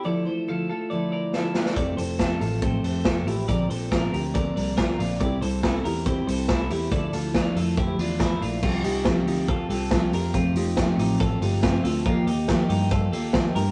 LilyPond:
<<
  \new Staff \with { instrumentName = "Clean electric guitar" } { \time 4/4 \key d \minor \tempo 4 = 140 <a' d''>8 <a' c''>8 <f' a'>8 <f' a'>8 <a' d''>8 <bes' d''>8 <f' a'>8 <d' f'>8 | <a' d''>8 <a' c''>8 <f' a'>8 <f' a'>8 <a' c''>8 <a' c''>8 <f' a'>8 <e' g'>8 | <bes' d''>8 <a' c''>8 <f' bes'>8 <g' bes'>8 <bes' d''>8 <bes' d''>8 <f' bes'>8 <d' f'>8 | <g' d''>8 <a' c''>8 <e' a'>8 <g' bes'>8 <g' c''>8 <a' c''>8 <e' a'>8 <e' g'>8 |
<a' d''>8 <f' a'>8 <d' f'>8 <f' a'>8 <e' g'>8 <d' f'>8 <a e'>8 <d' f'>8 | \key c \dorian <c' f'>8 <ees' g'>4 <ees' g'>8 <f' a'>8 <f' a'>4 <g' bes'>8 | <c' f'>8 <ees' g'>4 <ees' g'>8 <f' a'>8 <ees' g'>8 <c' f'>8 <f' a'>8 | <bes f'>8 <ees' g'>4 <ees' g'>8 <f' a'>8 <f' a'>4 <g' bes'>8 | }
  \new Staff \with { instrumentName = "Steel-string acoustic guitar" } { \time 4/4 \key d \minor <d f a e'>8 <f a e'>8 <d f a e'>8 <f a>8 <d f a e'>4 <d f a e'>4 | <f, c f a c'>8 <f a c'>8 <c f a c'>8 <f a c'>8 <f, c f a c'>4 <c f a c'>8 <f a c'>8 | <bes, d f c' d'>8 <f c' d'>8 <d f c' d'>4 <bes, d f c' d'>4 <d f c' d'>4 | <c g c' e'>8 <g c' e'>8 <c g c' e'>8 <g c' e'>8 <c g c' e'>4 <c g c' e'>8 <g c' e'>8 |
<d f a e'>8 <f a e'>8 <d f a e'>4 <d f a e'>4 <d f a e'>8 <f a e'>8 | \key c \dorian <c f c' f' g'>8 <c' f' g'>8 <c f c' f' g'>4 <f c' f' g'>8 <c' f' g'>8 <c f c' f' g'>8 <c' f' g'>8 | <f, c f a c' f'>8 <f a c' f'>8 <f, c f a c' f'>4 <f a c' f'>8 <f a c' f'>8 <f, c f a c' f'>8 <f a c' f'>8 | <ees f bes ees' g'>8 <bes ees' g'>8 <ees f bes ees' g'>4 <f bes ees' g'>8 <bes ees' g'>8 <ees f bes ees' g'>8 <bes ees' g'>8 | }
  \new Staff \with { instrumentName = "Picked electric bass" } { \clef bass \time 4/4 \key d \minor r1 | f,,8 f,,4 a,,4 f,,8 f,,8 a,,8 | bes,,8 bes,,4 d,4 c,4 bes,,8 | c,8 c,4 e,4 c,8 c,8 e,8 |
d,8 d,4 f,4 e,4 bes,,8 | \key c \dorian c,8 c,4 d,4 c,8 c,8 f,8 | f,,8 f,,4 a,,4 g,,4 d,8 | ees,8 ees,4 g,4 ees,8 ees,8 g,8 | }
  \new DrumStaff \with { instrumentName = "Drums" } \drummode { \time 4/4 r4 r4 r4 sn8 sn16 sn16 | <hh bd>8 hho8 <hh bd sn>8 hho8 <hh bd>8 hho8 <hh bd sn>8 hho8 | <hh bd>8 hho8 <hh bd sn>8 hho8 <hh bd>8 hho8 <hh bd sn>8 hho8 | <hh bd>8 hho8 <hh bd sn>8 hho8 <hh bd>8 hho8 <hh bd sn>8 hho8 |
<hh bd>8 hho8 <hh bd sn>8 hho8 <hh bd>8 hho8 <hh bd sn>8 hho8 | <cymc bd>8 hho8 <bd sn>8 hho8 <hh bd>8 hho8 <hh bd sn>8 hho8 | <hh bd>8 hho8 <hh bd sn>8 hho8 <hh bd>8 hho8 <hh bd sn>8 hho8 | <hh bd>8 hho8 <hh bd sn>8 hho8 <hh bd>8 hho8 <hh bd sn>8 hho8 | }
>>